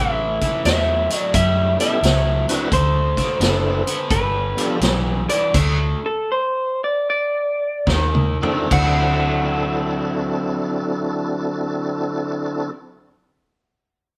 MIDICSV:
0, 0, Header, 1, 6, 480
1, 0, Start_track
1, 0, Tempo, 690449
1, 1888, Time_signature, 4, 2, 24, 8
1, 2853, Tempo, 719424
1, 3813, Tempo, 761421
1, 4773, Tempo, 823045
1, 5733, Tempo, 860832
1, 8777, End_track
2, 0, Start_track
2, 0, Title_t, "Clean electric guitar"
2, 0, Program_c, 0, 27
2, 0, Note_on_c, 0, 76, 84
2, 429, Note_off_c, 0, 76, 0
2, 458, Note_on_c, 0, 76, 88
2, 827, Note_off_c, 0, 76, 0
2, 827, Note_on_c, 0, 74, 88
2, 931, Note_off_c, 0, 74, 0
2, 940, Note_on_c, 0, 76, 90
2, 1229, Note_off_c, 0, 76, 0
2, 1256, Note_on_c, 0, 76, 79
2, 1702, Note_off_c, 0, 76, 0
2, 1901, Note_on_c, 0, 72, 91
2, 2854, Note_off_c, 0, 72, 0
2, 2856, Note_on_c, 0, 71, 91
2, 3303, Note_off_c, 0, 71, 0
2, 3650, Note_on_c, 0, 74, 89
2, 3804, Note_off_c, 0, 74, 0
2, 4138, Note_on_c, 0, 69, 88
2, 4287, Note_off_c, 0, 69, 0
2, 4301, Note_on_c, 0, 72, 95
2, 4607, Note_off_c, 0, 72, 0
2, 4631, Note_on_c, 0, 74, 71
2, 4779, Note_off_c, 0, 74, 0
2, 4792, Note_on_c, 0, 74, 98
2, 5238, Note_off_c, 0, 74, 0
2, 5740, Note_on_c, 0, 78, 82
2, 7941, Note_off_c, 0, 78, 0
2, 8777, End_track
3, 0, Start_track
3, 0, Title_t, "Tonewheel organ"
3, 0, Program_c, 1, 16
3, 1241, Note_on_c, 1, 59, 77
3, 1244, Note_on_c, 1, 61, 70
3, 1247, Note_on_c, 1, 64, 74
3, 1249, Note_on_c, 1, 67, 64
3, 1253, Note_on_c, 1, 69, 82
3, 1390, Note_off_c, 1, 59, 0
3, 1392, Note_off_c, 1, 61, 0
3, 1393, Note_off_c, 1, 64, 0
3, 1394, Note_off_c, 1, 67, 0
3, 1396, Note_off_c, 1, 69, 0
3, 1721, Note_on_c, 1, 60, 80
3, 1722, Note_on_c, 1, 62, 71
3, 1727, Note_on_c, 1, 64, 76
3, 1728, Note_on_c, 1, 66, 75
3, 1733, Note_on_c, 1, 71, 93
3, 1869, Note_off_c, 1, 60, 0
3, 1870, Note_off_c, 1, 62, 0
3, 1873, Note_off_c, 1, 64, 0
3, 1873, Note_off_c, 1, 66, 0
3, 1875, Note_off_c, 1, 71, 0
3, 2361, Note_on_c, 1, 57, 65
3, 2367, Note_on_c, 1, 62, 59
3, 2371, Note_on_c, 1, 64, 58
3, 2374, Note_on_c, 1, 66, 54
3, 2378, Note_on_c, 1, 69, 65
3, 2652, Note_off_c, 1, 57, 0
3, 2655, Note_off_c, 1, 62, 0
3, 2657, Note_off_c, 1, 64, 0
3, 2659, Note_off_c, 1, 66, 0
3, 2661, Note_off_c, 1, 69, 0
3, 3153, Note_on_c, 1, 59, 89
3, 3156, Note_on_c, 1, 62, 81
3, 3160, Note_on_c, 1, 65, 74
3, 3163, Note_on_c, 1, 67, 71
3, 3166, Note_on_c, 1, 69, 92
3, 3305, Note_off_c, 1, 59, 0
3, 3307, Note_off_c, 1, 62, 0
3, 3309, Note_off_c, 1, 65, 0
3, 3311, Note_off_c, 1, 67, 0
3, 3312, Note_off_c, 1, 69, 0
3, 5557, Note_on_c, 1, 60, 70
3, 5558, Note_on_c, 1, 62, 61
3, 5561, Note_on_c, 1, 64, 73
3, 5563, Note_on_c, 1, 66, 65
3, 5565, Note_on_c, 1, 69, 82
3, 5712, Note_off_c, 1, 60, 0
3, 5713, Note_off_c, 1, 62, 0
3, 5714, Note_off_c, 1, 64, 0
3, 5715, Note_off_c, 1, 66, 0
3, 5716, Note_off_c, 1, 69, 0
3, 5721, Note_on_c, 1, 60, 59
3, 5728, Note_on_c, 1, 62, 55
3, 5732, Note_on_c, 1, 64, 56
3, 5736, Note_on_c, 1, 66, 58
3, 5739, Note_on_c, 1, 69, 63
3, 7944, Note_off_c, 1, 60, 0
3, 7951, Note_off_c, 1, 62, 0
3, 7954, Note_off_c, 1, 64, 0
3, 7959, Note_off_c, 1, 66, 0
3, 7962, Note_off_c, 1, 69, 0
3, 8777, End_track
4, 0, Start_track
4, 0, Title_t, "Overdriven electric guitar"
4, 0, Program_c, 2, 29
4, 0, Note_on_c, 2, 45, 80
4, 0, Note_on_c, 2, 52, 86
4, 257, Note_off_c, 2, 45, 0
4, 258, Note_off_c, 2, 52, 0
4, 288, Note_on_c, 2, 45, 69
4, 293, Note_on_c, 2, 52, 76
4, 435, Note_off_c, 2, 45, 0
4, 437, Note_off_c, 2, 52, 0
4, 455, Note_on_c, 2, 45, 86
4, 460, Note_on_c, 2, 54, 89
4, 738, Note_off_c, 2, 45, 0
4, 740, Note_off_c, 2, 54, 0
4, 774, Note_on_c, 2, 45, 58
4, 777, Note_on_c, 2, 54, 68
4, 917, Note_off_c, 2, 45, 0
4, 919, Note_off_c, 2, 54, 0
4, 934, Note_on_c, 2, 45, 75
4, 938, Note_on_c, 2, 55, 90
4, 1217, Note_off_c, 2, 45, 0
4, 1219, Note_off_c, 2, 55, 0
4, 1254, Note_on_c, 2, 45, 76
4, 1256, Note_on_c, 2, 55, 87
4, 1396, Note_off_c, 2, 45, 0
4, 1398, Note_off_c, 2, 55, 0
4, 1411, Note_on_c, 2, 45, 85
4, 1417, Note_on_c, 2, 54, 79
4, 1695, Note_off_c, 2, 45, 0
4, 1697, Note_off_c, 2, 54, 0
4, 1733, Note_on_c, 2, 45, 84
4, 1736, Note_on_c, 2, 54, 82
4, 1876, Note_off_c, 2, 45, 0
4, 1877, Note_off_c, 2, 54, 0
4, 1888, Note_on_c, 2, 50, 85
4, 1891, Note_on_c, 2, 57, 93
4, 2173, Note_off_c, 2, 50, 0
4, 2175, Note_off_c, 2, 57, 0
4, 2210, Note_on_c, 2, 50, 71
4, 2214, Note_on_c, 2, 57, 74
4, 2355, Note_off_c, 2, 50, 0
4, 2357, Note_off_c, 2, 57, 0
4, 2364, Note_on_c, 2, 50, 80
4, 2367, Note_on_c, 2, 59, 90
4, 2654, Note_off_c, 2, 50, 0
4, 2655, Note_off_c, 2, 59, 0
4, 2692, Note_on_c, 2, 50, 68
4, 2694, Note_on_c, 2, 59, 78
4, 2839, Note_off_c, 2, 50, 0
4, 2841, Note_off_c, 2, 59, 0
4, 2851, Note_on_c, 2, 43, 75
4, 2854, Note_on_c, 2, 50, 83
4, 3133, Note_off_c, 2, 43, 0
4, 3135, Note_off_c, 2, 50, 0
4, 3165, Note_on_c, 2, 43, 88
4, 3168, Note_on_c, 2, 53, 88
4, 3312, Note_off_c, 2, 43, 0
4, 3313, Note_off_c, 2, 53, 0
4, 3324, Note_on_c, 2, 43, 71
4, 3329, Note_on_c, 2, 52, 86
4, 3613, Note_off_c, 2, 43, 0
4, 3615, Note_off_c, 2, 52, 0
4, 3645, Note_on_c, 2, 43, 74
4, 3648, Note_on_c, 2, 52, 90
4, 3796, Note_off_c, 2, 43, 0
4, 3797, Note_off_c, 2, 52, 0
4, 3809, Note_on_c, 2, 50, 66
4, 3814, Note_on_c, 2, 57, 74
4, 4090, Note_off_c, 2, 50, 0
4, 4092, Note_off_c, 2, 57, 0
4, 5242, Note_on_c, 2, 51, 80
4, 5246, Note_on_c, 2, 58, 76
4, 5531, Note_off_c, 2, 51, 0
4, 5533, Note_off_c, 2, 58, 0
4, 5566, Note_on_c, 2, 51, 77
4, 5568, Note_on_c, 2, 60, 73
4, 5717, Note_off_c, 2, 51, 0
4, 5718, Note_off_c, 2, 60, 0
4, 5728, Note_on_c, 2, 50, 82
4, 5739, Note_on_c, 2, 54, 75
4, 5745, Note_on_c, 2, 60, 91
4, 5751, Note_on_c, 2, 64, 106
4, 7951, Note_off_c, 2, 50, 0
4, 7961, Note_off_c, 2, 54, 0
4, 7967, Note_off_c, 2, 60, 0
4, 7973, Note_off_c, 2, 64, 0
4, 8777, End_track
5, 0, Start_track
5, 0, Title_t, "Fingered electric bass"
5, 0, Program_c, 3, 33
5, 0, Note_on_c, 3, 33, 94
5, 259, Note_off_c, 3, 33, 0
5, 453, Note_on_c, 3, 40, 80
5, 740, Note_off_c, 3, 40, 0
5, 931, Note_on_c, 3, 42, 92
5, 1219, Note_off_c, 3, 42, 0
5, 1408, Note_on_c, 3, 37, 98
5, 1696, Note_off_c, 3, 37, 0
5, 1889, Note_on_c, 3, 38, 90
5, 2177, Note_off_c, 3, 38, 0
5, 2362, Note_on_c, 3, 30, 81
5, 2656, Note_off_c, 3, 30, 0
5, 2856, Note_on_c, 3, 31, 89
5, 3140, Note_off_c, 3, 31, 0
5, 3325, Note_on_c, 3, 35, 95
5, 3618, Note_off_c, 3, 35, 0
5, 3814, Note_on_c, 3, 38, 83
5, 4058, Note_off_c, 3, 38, 0
5, 5242, Note_on_c, 3, 39, 93
5, 5537, Note_off_c, 3, 39, 0
5, 5734, Note_on_c, 3, 38, 86
5, 7934, Note_off_c, 3, 38, 0
5, 8777, End_track
6, 0, Start_track
6, 0, Title_t, "Drums"
6, 288, Note_on_c, 9, 42, 61
6, 289, Note_on_c, 9, 36, 73
6, 357, Note_off_c, 9, 42, 0
6, 358, Note_off_c, 9, 36, 0
6, 453, Note_on_c, 9, 42, 83
6, 465, Note_on_c, 9, 38, 101
6, 522, Note_off_c, 9, 42, 0
6, 534, Note_off_c, 9, 38, 0
6, 767, Note_on_c, 9, 42, 69
6, 837, Note_off_c, 9, 42, 0
6, 931, Note_on_c, 9, 42, 105
6, 932, Note_on_c, 9, 36, 115
6, 1000, Note_off_c, 9, 42, 0
6, 1001, Note_off_c, 9, 36, 0
6, 1251, Note_on_c, 9, 42, 63
6, 1320, Note_off_c, 9, 42, 0
6, 1414, Note_on_c, 9, 42, 78
6, 1426, Note_on_c, 9, 38, 106
6, 1483, Note_off_c, 9, 42, 0
6, 1495, Note_off_c, 9, 38, 0
6, 1730, Note_on_c, 9, 42, 69
6, 1799, Note_off_c, 9, 42, 0
6, 1890, Note_on_c, 9, 36, 108
6, 1892, Note_on_c, 9, 42, 82
6, 1959, Note_off_c, 9, 36, 0
6, 1961, Note_off_c, 9, 42, 0
6, 2206, Note_on_c, 9, 36, 72
6, 2208, Note_on_c, 9, 42, 56
6, 2220, Note_on_c, 9, 38, 34
6, 2275, Note_off_c, 9, 36, 0
6, 2278, Note_off_c, 9, 42, 0
6, 2290, Note_off_c, 9, 38, 0
6, 2370, Note_on_c, 9, 42, 80
6, 2381, Note_on_c, 9, 38, 112
6, 2439, Note_off_c, 9, 42, 0
6, 2451, Note_off_c, 9, 38, 0
6, 2691, Note_on_c, 9, 42, 61
6, 2761, Note_off_c, 9, 42, 0
6, 2854, Note_on_c, 9, 36, 116
6, 2854, Note_on_c, 9, 42, 82
6, 2921, Note_off_c, 9, 36, 0
6, 2921, Note_off_c, 9, 42, 0
6, 3169, Note_on_c, 9, 42, 61
6, 3236, Note_off_c, 9, 42, 0
6, 3327, Note_on_c, 9, 42, 72
6, 3338, Note_on_c, 9, 38, 106
6, 3394, Note_off_c, 9, 42, 0
6, 3405, Note_off_c, 9, 38, 0
6, 3647, Note_on_c, 9, 42, 64
6, 3714, Note_off_c, 9, 42, 0
6, 3813, Note_on_c, 9, 36, 113
6, 3814, Note_on_c, 9, 42, 83
6, 3814, Note_on_c, 9, 49, 77
6, 3876, Note_off_c, 9, 36, 0
6, 3877, Note_off_c, 9, 42, 0
6, 3877, Note_off_c, 9, 49, 0
6, 5242, Note_on_c, 9, 36, 86
6, 5250, Note_on_c, 9, 38, 76
6, 5300, Note_off_c, 9, 36, 0
6, 5308, Note_off_c, 9, 38, 0
6, 5403, Note_on_c, 9, 47, 65
6, 5462, Note_off_c, 9, 47, 0
6, 5569, Note_on_c, 9, 43, 103
6, 5627, Note_off_c, 9, 43, 0
6, 5733, Note_on_c, 9, 36, 108
6, 5734, Note_on_c, 9, 49, 88
6, 5789, Note_off_c, 9, 36, 0
6, 5790, Note_off_c, 9, 49, 0
6, 8777, End_track
0, 0, End_of_file